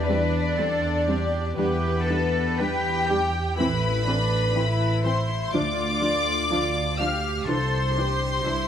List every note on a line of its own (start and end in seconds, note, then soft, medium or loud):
0.00 0.46 E2 medium
0.00 1.55 E3 medium
0.00 1.56 D4 medium
0.00 1.80 D4 soft
0.00 0.32 D5 medium
0.00 1.53 D5 medium
0.00 2.77 D6 medium
0.08 0.16 G3 medium
0.08 0.16 C4 medium
0.08 1.61 C4 medium
0.08 0.57 B4 medium
0.33 1.06 D5 soft
0.57 1.46 E2 medium
0.57 0.66 G3 medium
0.57 0.66 C4 medium
0.57 1.07 A4 medium
0.57 2.57 G5 medium
0.81 1.60 C6 medium
1.07 1.15 G3 medium
1.07 1.16 C4 medium
1.07 1.55 G4 medium
1.07 2.31 D5 medium
1.31 3.32 G4 soft
1.56 2.47 E2 medium
1.56 3.61 E3 medium
1.56 1.66 G3 medium
1.56 2.57 B3 medium
1.56 1.65 D4 medium
1.56 2.06 G4 medium
1.56 2.59 B4 medium
1.81 3.61 D4 medium
2.07 2.17 G3 medium
2.07 2.16 D4 medium
2.07 2.58 A4 medium
2.07 3.61 B4 medium
2.32 3.07 D5 medium
2.58 3.46 E2 medium
2.58 2.67 G3 medium
2.58 2.67 D4 medium
2.58 3.58 G4 medium
2.58 3.08 B4 medium
2.58 3.61 G5 medium
2.58 3.57 G5 loud
2.84 3.61 B5 medium
3.08 3.17 G3 medium
3.08 3.17 D4 medium
3.08 3.57 G4 medium
3.08 3.61 D5 medium
3.33 3.61 G4 soft
3.57 4.44 A1 medium
3.57 5.57 A2 medium
3.57 3.67 E3 medium
3.57 3.66 C4 medium
3.57 4.06 E4 medium
3.57 5.02 B4 loud
3.57 5.01 B5 medium
3.83 5.57 C4 soft
4.06 4.15 E3 medium
4.06 4.15 C4 medium
4.06 4.55 D4 medium
4.06 6.01 A4 medium
4.55 5.42 A1 medium
4.55 4.64 E3 medium
4.55 4.64 C4 medium
4.55 5.52 E4 medium
4.55 5.56 E5 medium
4.80 6.74 A5 medium
5.04 5.13 E3 medium
5.04 5.13 C4 medium
5.04 5.56 C5 medium
5.04 5.54 C5 medium
5.04 5.53 C6 medium
5.29 5.57 E4 medium
5.52 6.39 D2 medium
5.52 7.51 D3 medium
5.52 5.62 F3 medium
5.52 5.61 D4 medium
5.52 6.49 F4 medium
5.52 7.00 D5 medium
5.52 6.99 D6 loud
5.77 7.71 D4 medium
6.01 6.09 F3 soft
6.01 6.10 D4 soft
6.01 7.52 A4 medium
6.27 6.99 D5 medium
6.50 7.37 D2 medium
6.50 6.59 F3 medium
6.50 6.58 D4 medium
6.50 6.98 F4 medium
6.50 7.52 F5 medium
6.76 7.52 A5 medium
6.98 7.07 F3 medium
6.98 7.08 D4 medium
6.98 7.46 G4 medium
6.98 8.19 D5 medium
6.98 7.48 F5 medium
6.98 7.47 F6 medium
7.24 7.52 F4 soft
7.46 8.33 C2 medium
7.46 8.68 C3 medium
7.46 7.56 E3 medium
7.46 7.56 D4 medium
7.46 7.96 A4 medium
7.46 8.68 C5 medium
7.46 8.68 C6 medium
7.73 8.68 D4 medium
7.96 8.05 E3 medium
7.96 8.05 D4 medium
7.96 8.44 G4 medium
8.20 8.68 D5 soft
8.44 8.68 C2 medium
8.44 8.53 E3 soft
8.44 8.53 D4 medium
8.44 8.68 E4 medium
8.44 8.68 E5 medium